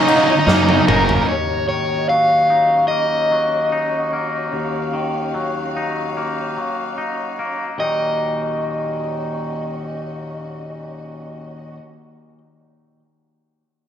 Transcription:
Already playing: clean electric guitar C#3 F#3 A#3 C#4, string section F#3 D#5 A#5
0.01 overdriven electric guitar D#4
0.07 distorted electric guitar F#3 A#3 C#4 D#4, clean electric guitar D#4, overdriven electric guitar D#4, crash
0.16 overdriven electric guitar D#4
0.24 overdriven electric guitar D#4
0.28 overdriven electric guitar D#4, muted distorted electric guitar stroke
0.39 overdriven electric guitar D#4
0.47 fingered electric bass F#2, distorted electric guitar F#2 C#3 F#3 A#3 C#4 D#4, clean electric guitar A#3, overdriven electric guitar D#4, snare
0.55 overdriven electric guitar D#4
0.62 overdriven electric guitar D#4
0.68 distorted electric guitar F#3 A#3 C#4 D#4, overdriven electric guitar D#4, high tom
0.77 overdriven electric guitar D#4
0.88 fingered electric bass F#1, distorted electric guitar F#3 A#3 C#4 D#4, clean electric guitar D#4, overdriven electric guitar A#4, mid tom
0.96 overdriven electric guitar A#4
1.05 overdriven electric guitar A#4
1.09 overdriven electric guitar A#4, floor tom
1.21 overdriven electric guitar A#4
1.28 clean electric guitar D#2, string section C#4 F#4 D#5, overdriven electric guitar C#5
1.69 clean electric guitar D#3, overdriven electric guitar C#5
2.09 clean electric guitar F#3, overdriven electric guitar F5
2.50 clean electric guitar D#4
2.88 clean electric guitar A#3, overdriven electric guitar D#5
3.31 clean electric guitar F#3
3.72 clean electric guitar D#4
4.13 clean electric guitar A#3
4.52 clean electric guitar D#2, string section F5
4.93 clean electric guitar D#3
5.34 clean electric guitar F#3
5.76 clean electric guitar D#4
6.17 clean electric guitar A#3
6.57 clean electric guitar F#3
6.98 clean electric guitar D#4
7.39 clean electric guitar A#3
7.78 clean electric guitar D#2 A#2 D#3 F#3 A#3, string section C#4 F#4 D#5, overdriven electric guitar D#5
7.82 clean electric guitar D#4

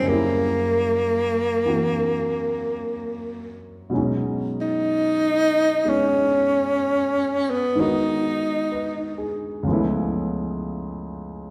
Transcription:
0.00 grand piano F#2 C#3
0.06 grand piano G3 A#3, tenor saxophone A#3
0.12 grand piano E4
1.65 grand piano E3 A#3 C4 F#4
3.90 grand piano B2 F#3 G#3 C#4
3.95 grand piano D#4
4.61 tenor saxophone D#4
5.85 grand piano G#3 B3 D#4
5.89 tenor saxophone C#4
7.50 tenor saxophone B3
7.75 grand piano G#2 D#3 B3 A#4
7.80 tenor saxophone D#4, grand piano F#4
8.72 grand piano B4
9.18 grand piano G#4
9.63 grand piano C#2 C#3
9.67 grand piano F3 A3
9.71 grand piano B3 E4

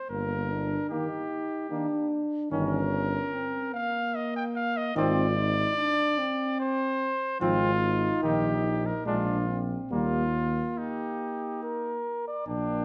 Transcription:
0.10 tuba G1, french horn A#3, trumpet A#4
0.51 french horn D4
0.90 euphonium D#3, flugelhorn A#3, french horn D#4, trumpet G4
1.71 euphonium D#3, flugelhorn A#3, french horn D4
2.51 tuba G1, euphonium D#3, flugelhorn C#4, french horn C#4, trumpet A#4
3.33 french horn C4
3.74 french horn A#3, trumpet F5
4.15 trumpet D#5
4.36 trumpet G5
4.56 trumpet F5
4.77 trumpet D#5
4.95 tuba G#1, euphonium D#3, flugelhorn C4, french horn F4, trumpet D5
5.36 french horn D#4
5.77 french horn D4
6.18 french horn C4
6.60 trumpet C5
7.40 tuba G#1, euphonium F3, flugelhorn C4, french horn D#4, trumpet F4
8.22 tuba A#1, euphonium D#3, flugelhorn D#4, trumpet G4
8.86 trumpet A#4
9.06 tuba A#1, euphonium G#3, french horn D4, flugelhorn D4, trumpet F4
9.49 french horn C4
9.91 tuba D#2, euphonium G3, flugelhorn A#3, french horn A#3, trumpet F4
10.77 trumpet D#4, flugelhorn G4
11.63 flugelhorn A#4
12.28 flugelhorn D5
12.47 tuba A#1, french horn A#3, flugelhorn D4, trumpet G5

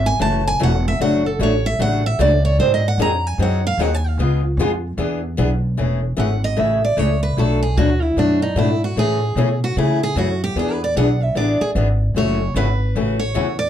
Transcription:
Already playing: upright bass G#1
0.06 steel-string acoustic guitar G#5
0.19 upright bass F#1, steel-string acoustic guitar C#3 E3 A3 C#4 F#4 A5
0.47 steel-string acoustic guitar G#5
0.60 upright bass E1, steel-string acoustic guitar C#3 E3 A3 C#4 F#4 F#5
0.88 steel-string acoustic guitar E5
0.99 upright bass F#1, steel-string acoustic guitar C#3 F#3 A3 D4 F#4 F#5
1.26 steel-string acoustic guitar A4
1.39 upright bass A1, steel-string acoustic guitar C#3 F#3 A3 D4 F#4 C#5
1.66 steel-string acoustic guitar E5
1.79 upright bass A1, steel-string acoustic guitar C#3 F#3 A3 D4 F#4 F#5
2.06 steel-string acoustic guitar E5
2.19 upright bass C#2, steel-string acoustic guitar C#3 F#3 A3 D4 F#4 D5
2.45 steel-string acoustic guitar C#5
2.58 upright bass G#2, steel-string acoustic guitar D#3 F#3 C4 D#4 G#4 C5
2.74 steel-string acoustic guitar D#5
2.88 steel-string acoustic guitar F#5
2.98 upright bass F2, steel-string acoustic guitar D#3 F#3 C4 D#4 G#4 A#5
3.27 steel-string acoustic guitar G#5
3.38 upright bass F#2, steel-string acoustic guitar D#3 F#3 C4 D#4 G#4
3.42 steel-string acoustic guitar F#5
3.67 steel-string acoustic guitar F5
3.78 upright bass D#2, steel-string acoustic guitar D#3 F#3 C4 D#4 G#4 F#5
3.94 steel-string acoustic guitar G#5
4.08 steel-string acoustic guitar F5
4.18 upright bass C#2, steel-string acoustic guitar C#3 G#3 B3 F4 G#4
4.57 upright bass F2, steel-string acoustic guitar C#3 G#3 B3 F4 G#4
4.97 upright bass E2, steel-string acoustic guitar E3 B3 D4 G#4
5.37 upright bass B1, steel-string acoustic guitar E3 B3 D4 G#4
5.77 upright bass E1, steel-string acoustic guitar C#3 E3 A3 C#4 G#4
6.17 upright bass G#1, steel-string acoustic guitar C#3 E3 A3 C#4 G#4 F#5
6.44 steel-string acoustic guitar D#5
6.57 upright bass A1, steel-string acoustic guitar C#3 E3 A3 C#4 G#4 E5
6.85 steel-string acoustic guitar D5
6.97 upright bass C#2, steel-string acoustic guitar C#3 E3 A3 C#4 G#4 C#5
7.23 steel-string acoustic guitar B4
7.37 upright bass B1, steel-string acoustic guitar B2 F#3 A3 D4 F#4 A4
7.63 steel-string acoustic guitar G#4
7.77 upright bass D2, steel-string acoustic guitar B2 F#3 A3 D4 F#4
8.02 steel-string acoustic guitar E4
8.16 upright bass F#2, steel-string acoustic guitar B2 F#3 A3 D4 F#4
8.42 steel-string acoustic guitar D#4
8.55 upright bass G#2, steel-string acoustic guitar B2 F#3 A3 D4 E4 F#4
8.84 steel-string acoustic guitar F#4
8.96 upright bass A2, steel-string acoustic guitar C#3 E3 A3 C#4 G#4
9.35 upright bass B2, steel-string acoustic guitar C#3 E3 A3 C#4 G#4
9.64 steel-string acoustic guitar F#4
9.76 upright bass C#3, steel-string acoustic guitar C#3 E3 A3 C#4 E4 G#4
10.03 steel-string acoustic guitar G#4
10.16 upright bass F#2, steel-string acoustic guitar C#3 E3 A3 C#4 F#4 G#4
10.44 steel-string acoustic guitar G4
10.55 upright bass E2, steel-string acoustic guitar E3 B3 D4 G#4
10.72 steel-string acoustic guitar B4
10.84 steel-string acoustic guitar D5
10.96 upright bass B1, steel-string acoustic guitar E3 B3 D4 G#4 F#5
11.23 steel-string acoustic guitar E5
11.35 upright bass A1, steel-string acoustic guitar E3 B3 D4 G#4 D5
11.61 steel-string acoustic guitar G#4, muted upright bass stroke
11.75 upright bass G#1, steel-string acoustic guitar E3 B3 D4 G#4
12.14 upright bass F#1, steel-string acoustic guitar C#3 E3 A3 C#4 F#4 C#5
12.54 upright bass G#1, steel-string acoustic guitar C#3 E3 A3 C#4 F#4 B4
12.95 upright bass A1, steel-string acoustic guitar C#3 E3 A3 C#4 F#4
13.19 steel-string acoustic guitar C#5
13.34 upright bass E2, steel-string acoustic guitar C#3 E3 A3 C#4 F#4
13.59 steel-string acoustic guitar D5

